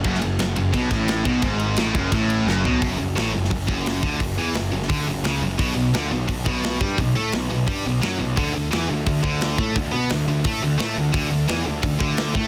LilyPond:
<<
  \new Staff \with { instrumentName = "Distorted electric guitar" } { \clef bass \time 4/4 \key fis \minor \tempo 4 = 173 fis,8 fis,8 fis,8 fis,8 b,8 a,4 b,8 | gis,4 a,8 fis,8 a,4 fis,8 b,8 | fis,8 fis,8 a,8 fis,8 fis,8 fis,4 d8 | fis,8 e8 fis,8 fis,8 d8 fis,8 cis8 fis,8 |
b,8 b,8 d8 b,8 b,8 b,4 g8 | b,8 a8 b,8 b,8 g8 b,8 fis8 b,8 | d8 d8 e8 d8 d8 d4 a8 | d8 b8 d8 d8 a8 d8 a8 d8 |
d8 d8 e8 d8 d8 d4 a8 | }
  \new Staff \with { instrumentName = "Overdriven electric guitar" } { \clef bass \time 4/4 \key fis \minor fis,8 fis,8 fis,8 fis,8 b,8 a,4 b,8 | gis,4 a,8 fis,8 a,4 fis,8 b,8 | r1 | r1 |
r1 | r1 | r1 | r1 |
r1 | }
  \new Staff \with { instrumentName = "Picked electric bass" } { \clef bass \time 4/4 \key fis \minor fis,,8 fis,,8 fis,,8 fis,,8 b,,8 a,,4 b,,8 | gis,,4 a,,8 fis,,8 a,,4 fis,,8 b,,8 | fis,,8 fis,,8 a,,8 fis,,8 fis,,8 fis,,4 d,8 | fis,,8 e,8 fis,,8 fis,,8 d,8 fis,,8 cis,8 fis,,8 |
b,,8 b,,8 d,8 b,,8 b,,8 b,,4 g,8 | b,,8 a,8 b,,8 b,,8 g,8 b,,8 fis,8 b,,8 | d,8 d,8 e,8 d,8 d,8 d,4 a,8 | d,8 b,8 d,8 d,8 a,8 d,8 a,8 d,8 |
d,8 d,8 e,8 d,8 d,8 d,4 a,8 | }
  \new DrumStaff \with { instrumentName = "Drums" } \drummode { \time 4/4 <bd cymr>16 sn16 cymr8 <cymr sn>8 cymr8 <bd cymr>8 <bd cymr sn>8 <cymr sn>8 <bd cymr>8 | <bd cymr>8 cymr8 <cymr sn>8 <bd cymr>8 <bd cymr>8 cymr8 sn8 tomfh8 | <hho bd>4 <hho sn>8. sn16 <hho bd>8 bd8 <hho sn>8 bd8 | <hho bd>4 <hho sn>8. sn16 <hho bd>4 <hho sn>4 |
<hho bd>4 <hho sn>4 <hho bd>8 bd8 <hho sn>8 bd8 | <hho bd>4 <hho sn>4 <hho bd>4 <hho sn>4 | <hho bd>4 <hho sn>4 <hho bd>8 bd8 <hho sn>8 bd8 | <hho bd>4 <hho sn>4 <hho bd>4 <hho sn>4 |
<hho bd>4 <hho sn>4 <hho bd>8 bd8 <hho sn>8 bd8 | }
>>